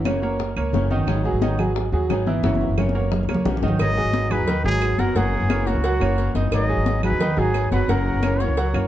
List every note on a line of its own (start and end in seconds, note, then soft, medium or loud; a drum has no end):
0.00 0.53 F#1 medium
0.04 0.21 C#3 medium
0.04 0.22 E3 medium
0.04 0.19 A#3 medium
0.04 0.22 A#3 medium
0.04 0.22 C#4 medium
0.04 0.21 F#4 medium
0.04 0.20 A#4 medium
0.04 0.20 C#5 medium
0.04 high bongo medium
0.04 high conga loud
0.04 claves medium
0.22 0.50 A#3 medium
0.22 0.38 A#3 soft
0.22 0.39 C#4 soft
0.22 0.38 F#4 soft
0.22 0.51 A#4 medium
0.22 0.51 C#5 medium
0.22 high bongo soft
0.22 high conga soft
0.39 muted nylon-string guitar stroke medium
0.39 high bongo medium
0.39 high conga soft
0.56 0.73 C#2 medium
0.56 0.84 A#3 medium
0.56 0.85 A#4 medium
0.56 0.85 C#5 medium
0.56 high conga soft
0.56 claves medium
0.73 1.06 F#1 loud
0.73 0.90 C#3 medium
0.73 0.90 E3 medium
0.73 0.90 A#3 medium
0.73 0.90 C#4 medium
0.73 0.89 F#4 medium
0.73 high bongo soft
0.73 low bongo medium
0.73 high conga soft
0.90 1.18 D#3 medium
0.90 1.08 A#3 soft
0.90 1.07 C#4 soft
0.90 1.19 D#4 medium
0.90 1.07 F#4 soft
0.90 1.19 D#5 medium
0.90 high bongo soft
0.90 high conga medium
1.07 1.31 G#1 medium
1.07 1.23 D#3 medium
1.07 1.24 F#3 medium
1.07 1.24 B3 medium
1.07 1.24 D#4 medium
1.07 1.23 G#4 medium
1.07 high bongo medium
1.07 high conga soft
1.07 claves medium
1.24 1.39 F#3 medium
1.24 1.41 B3 soft
1.24 1.41 D#4 medium
1.24 1.39 F#4 medium
1.24 1.40 G#4 medium
1.24 1.39 G#4 medium
1.24 high bongo soft
1.24 high conga soft
1.33 1.89 G#1 medium
1.41 1.58 D#3 medium
1.41 1.56 D#3 medium
1.41 1.58 F#3 medium
1.41 1.58 B3 medium
1.41 1.56 D#4 medium
1.41 1.58 D#4 medium
1.41 1.57 G#4 medium
1.41 1.56 D#5 medium
1.41 high bongo medium
1.41 high conga loud
1.58 1.87 F#3 medium
1.58 1.75 B3 soft
1.58 1.75 D#4 soft
1.58 1.87 F#4 medium
1.58 1.75 G#4 medium
1.58 1.87 G#4 medium
1.58 high bongo soft
1.58 high conga soft
1.58 low conga medium
1.58 claves medium
1.76 muted nylon-string guitar stroke medium
1.76 high bongo medium
1.76 high conga soft
1.92 2.08 D#2 medium
1.92 2.21 F#3 medium
1.92 2.21 F#4 medium
1.92 2.21 G#4 medium
1.92 high conga soft
2.09 2.42 G#1 medium
2.09 2.26 D#3 medium
2.09 2.26 F#3 medium
2.09 2.26 B3 medium
2.09 2.26 D#4 medium
2.09 2.25 G#4 medium
2.09 high bongo soft
2.09 low bongo medium
2.09 high conga soft
2.09 claves medium
2.26 2.41 E3 medium
2.26 2.44 B3 soft
2.26 2.43 D#4 soft
2.26 2.41 E4 medium
2.26 2.43 G#4 medium
2.26 2.41 E5 medium
2.26 high bongo soft
2.26 high conga medium
2.43 2.67 F#1 loud
2.43 2.60 C#3 medium
2.43 2.72 E3 medium
2.43 2.60 E3 medium
2.43 2.60 A#3 medium
2.43 2.60 C#4 medium
2.43 2.72 E4 medium
2.43 2.59 F#4 medium
2.43 2.72 E5 medium
2.43 high bongo medium
2.43 high conga medium
2.55 high conga medium
2.60 2.77 A#3 soft
2.60 2.77 C#4 soft
2.60 2.77 F#4 soft
2.60 high bongo soft
2.69 3.26 F#1 medium
2.77 2.94 C#3 medium
2.77 2.94 E3 medium
2.77 2.92 A#3 medium
2.77 2.94 A#3 medium
2.77 2.95 C#4 medium
2.77 2.93 F#4 medium
2.77 2.92 A#4 medium
2.77 2.92 C#5 medium
2.77 high bongo medium
2.77 low conga loud
2.77 claves medium
2.89 high conga medium
2.95 3.23 A#3 medium
2.95 3.12 A#3 soft
2.95 3.12 C#4 soft
2.95 3.11 F#4 medium
2.95 3.23 A#4 medium
2.95 3.23 C#5 medium
2.95 high bongo soft
3.00 low conga medium
3.12 muted nylon-string guitar stroke medium
3.12 high bongo medium
3.12 low conga medium
3.23 low conga medium
3.28 3.44 C#2 medium
3.28 3.57 A#3 medium
3.28 3.57 A#4 medium
3.28 3.57 C#5 medium
3.28 high bongo medium
3.28 claves medium
3.34 low conga loud
3.45 3.61 A#1 medium
3.45 3.62 C#3 medium
3.45 3.62 E3 medium
3.45 3.63 A#3 medium
3.45 3.63 C#4 medium
3.45 3.62 F#4 medium
3.45 high bongo loud
3.45 low conga loud
3.57 low conga medium
3.62 3.78 G#1 medium
3.62 3.77 D#3 medium
3.62 3.80 A#3 soft
3.62 3.80 C#4 soft
3.62 3.77 D#4 medium
3.62 3.79 F#4 medium
3.62 3.77 D#5 medium
3.62 low bongo medium
3.68 low conga loud
3.79 4.04 G#1 loud
3.79 4.30 D#3 medium
3.79 4.33 F#3 medium
3.79 4.31 B3 medium
3.79 4.30 D#4 medium
3.79 4.30 G#4 medium
3.79 4.33 D#5 loud
3.79 cowbell loud
3.79 high conga soft
3.79 claves medium
3.97 4.25 F#3 medium
3.97 4.25 F#4 medium
3.97 4.25 G#4 medium
3.97 high conga soft
4.04 4.37 G#1 medium
4.13 cowbell medium
4.13 high conga loud
4.31 4.45 F#3 medium
4.31 4.47 F#3 medium
4.31 4.47 B3 medium
4.31 4.48 D#4 medium
4.31 4.45 F#4 medium
4.31 4.47 G#4 medium
4.31 4.45 G#4 medium
4.31 4.65 B4 loud
4.31 high conga soft
4.31 low conga medium
4.31 claves medium
4.38 4.63 D#2 medium
4.47 4.62 D#3 medium
4.47 4.62 D#4 medium
4.47 4.62 D#5 medium
4.47 muted nylon-string guitar stroke medium
4.47 cowbell loud
4.47 high conga soft
4.47 low conga medium
4.64 4.97 G#1 medium
4.64 4.93 F#3 medium
4.64 4.80 F#3 medium
4.64 4.81 B3 medium
4.64 4.81 D#4 medium
4.64 4.93 F#4 medium
4.64 4.81 G#4 medium
4.64 5.01 G#4 loud
4.64 4.93 G#4 medium
4.64 high conga soft
4.81 5.15 F#3 medium
4.81 5.15 B3 medium
4.81 5.16 D#4 medium
4.81 5.16 G#4 medium
4.81 cowbell medium
4.81 high conga soft
4.81 claves medium
4.98 5.15 F#1 medium
4.98 5.13 F#3 medium
4.98 5.13 F#4 medium
4.98 5.18 A#4 loud
4.98 5.13 F#5 medium
4.98 cowbell medium
4.98 high conga medium
5.15 5.40 F#1 loud
5.15 5.66 C#3 medium
5.15 5.66 E3 medium
5.15 5.44 F#3 medium
5.15 5.67 A#3 medium
5.15 5.66 C#4 medium
5.15 5.44 F#4 medium
5.15 5.66 F#4 medium
5.15 5.69 G#4 loud
5.15 5.44 F#5 medium
5.15 cowbell loud
5.15 high conga soft
5.33 high conga soft
5.41 5.73 F#1 medium
5.50 5.78 A#3 medium
5.50 5.78 A#4 medium
5.50 5.78 C#5 medium
5.50 cowbell medium
5.50 high conga loud
5.50 claves medium
5.66 5.83 E3 medium
5.66 5.83 A#3 medium
5.66 5.83 C#4 medium
5.66 5.83 F#4 medium
5.66 6.35 F#4 medium
5.66 cowbell medium
5.66 high conga soft
5.75 5.99 C#2 medium
5.83 5.98 F#3 medium
5.83 5.98 F#4 medium
5.83 5.98 F#5 medium
5.83 muted nylon-string guitar stroke medium
5.83 cowbell loud
5.83 high conga soft
6.00 6.33 F#1 medium
6.00 6.16 E3 medium
6.00 6.29 A#3 medium
6.00 6.17 A#3 medium
6.00 6.17 C#4 medium
6.00 6.17 F#4 medium
6.00 6.29 A#4 medium
6.00 6.29 C#5 medium
6.00 high conga soft
6.00 claves medium
6.17 6.51 E3 medium
6.17 6.52 A#3 medium
6.17 6.52 C#4 medium
6.17 6.52 F#4 medium
6.17 cowbell medium
6.17 high conga soft
6.34 6.51 F#1 medium
6.34 6.63 D#4 medium
6.34 6.63 D#5 medium
6.34 cowbell medium
6.34 high conga medium
6.52 6.76 G#1 medium
6.52 7.02 D#3 medium
6.52 7.05 F#3 medium
6.52 7.03 B3 medium
6.52 7.03 D#4 medium
6.52 7.02 G#4 medium
6.52 7.00 D#5 loud
6.52 cowbell loud
6.52 high conga soft
6.52 claves medium
6.69 6.97 F#3 medium
6.69 6.97 F#4 medium
6.69 6.97 G#4 medium
6.69 high conga soft
6.77 7.10 G#1 medium
6.86 cowbell medium
6.86 high conga loud
7.03 7.17 F#3 medium
7.03 7.19 F#3 medium
7.03 7.20 B3 medium
7.03 7.20 D#4 medium
7.03 7.17 F#4 medium
7.03 7.20 G#4 medium
7.03 7.18 G#4 medium
7.03 7.40 B4 loud
7.03 high conga soft
7.03 low conga medium
7.03 claves medium
7.11 7.36 D#2 medium
7.20 7.34 D#3 medium
7.20 7.35 D#4 medium
7.20 7.35 D#5 medium
7.20 muted nylon-string guitar stroke medium
7.20 cowbell loud
7.20 high conga soft
7.20 low conga medium
7.37 7.70 G#1 medium
7.37 7.65 F#3 medium
7.37 7.52 F#3 medium
7.37 7.53 B3 medium
7.37 7.54 D#4 medium
7.37 7.66 F#4 medium
7.37 7.53 G#4 medium
7.37 7.66 G#4 medium
7.37 7.72 G#4 loud
7.37 high conga soft
7.54 7.88 F#3 medium
7.54 7.88 B3 medium
7.54 7.88 D#4 medium
7.54 7.89 G#4 medium
7.54 cowbell medium
7.54 high conga soft
7.54 claves medium
7.71 7.88 F#1 medium
7.71 7.86 F#3 medium
7.71 7.86 F#4 medium
7.71 7.92 B4 medium
7.71 7.86 F#5 medium
7.71 cowbell medium
7.71 high conga medium
7.88 8.13 F#1 loud
7.88 8.39 C#3 medium
7.88 8.39 E3 medium
7.88 8.17 F#3 medium
7.88 8.40 A#3 medium
7.88 8.39 C#4 medium
7.88 8.17 F#4 medium
7.88 8.39 F#4 medium
7.88 8.43 A#4 loud
7.88 8.17 F#5 medium
7.88 cowbell loud
7.88 high conga soft
8.06 high conga soft
8.14 8.47 F#1 medium
8.23 8.51 A#3 medium
8.23 8.51 A#4 medium
8.23 8.51 C#5 medium
8.23 cowbell medium
8.23 high conga loud
8.23 claves medium
8.40 8.56 E3 medium
8.40 8.57 A#3 medium
8.40 8.57 C#4 medium
8.40 8.56 F#4 medium
8.40 8.82 C#5 medium
8.40 cowbell medium
8.40 high conga soft
8.48 8.73 C#2 medium
8.57 8.71 F#3 medium
8.57 8.71 F#4 medium
8.57 8.72 F#5 medium
8.57 muted nylon-string guitar stroke medium
8.57 cowbell loud
8.57 high conga soft
8.74 8.88 F#1 medium
8.74 8.88 E3 medium
8.74 8.88 A#3 medium
8.74 8.88 C#4 medium
8.74 8.88 F#4 medium
8.74 8.88 A#4 medium
8.74 8.88 C#5 medium
8.74 high conga soft
8.74 claves medium